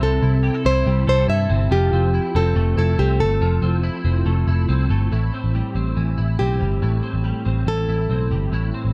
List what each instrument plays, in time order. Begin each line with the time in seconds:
Already playing: clean electric guitar G3 C4 E4 A4
0.01 picked electric bass C2, clean electric guitar C3, nylon-string guitar A4
0.22 picked electric bass C2, clean electric guitar E4
0.43 clean electric guitar G4
0.54 clean electric guitar A4
0.65 picked electric bass C2, clean electric guitar E4, nylon-string guitar C5
0.86 picked electric bass C2, clean electric guitar G3
1.07 picked electric bass C2, clean electric guitar A4, nylon-string guitar C5
1.28 picked electric bass G2, clean electric guitar E4, nylon-string guitar E5
1.49 picked electric bass G1, clean electric guitar C4
1.71 picked electric bass F1, clean electric guitar F3, nylon-string guitar G4
1.92 picked electric bass F1, clean electric guitar C4
2.14 clean electric guitar E4
2.35 picked electric bass F1, clean electric guitar C4, nylon-string guitar A4
2.56 picked electric bass F1, clean electric guitar A3
2.77 picked electric bass F1, clean electric guitar E4, nylon-string guitar A4
2.99 picked electric bass C2, clean electric guitar C4, nylon-string guitar G4
3.20 picked electric bass G1, clean electric guitar A3, nylon-string guitar A4
3.41 picked electric bass F1, clean electric guitar F3
3.62 picked electric bass F1, clean electric guitar C4
3.83 clean electric guitar E4
4.05 picked electric bass F1, clean electric guitar C4
4.26 picked electric bass F1, clean electric guitar A3
4.47 picked electric bass F1, clean electric guitar E4
4.69 picked electric bass C2, clean electric guitar C4
4.90 picked electric bass G1, clean electric guitar A3
5.12 picked electric bass A1, clean electric guitar A2 E4
5.34 clean electric guitar C4
5.44 picked electric bass A1
5.55 clean electric guitar G3
5.75 picked electric bass A1, clean electric guitar C4
5.97 picked electric bass A1, clean electric guitar E3
6.18 picked electric bass A1, clean electric guitar E4
6.39 picked electric bass B1, clean electric guitar C4, nylon-string guitar G4
6.60 picked electric bass G1, clean electric guitar G3
6.82 picked electric bass A1, clean electric guitar A2 E4
7.03 clean electric guitar C4
7.14 picked electric bass A1
7.24 clean electric guitar G3
7.45 picked electric bass A1, clean electric guitar C4
7.67 picked electric bass A1, clean electric guitar E3, nylon-string guitar A4
7.89 picked electric bass A1, clean electric guitar E4
8.10 picked electric bass B1, clean electric guitar C4
8.31 picked electric bass G1, clean electric guitar G3
8.52 picked electric bass A1, clean electric guitar A2 E4
8.74 clean electric guitar C4
8.85 picked electric bass A1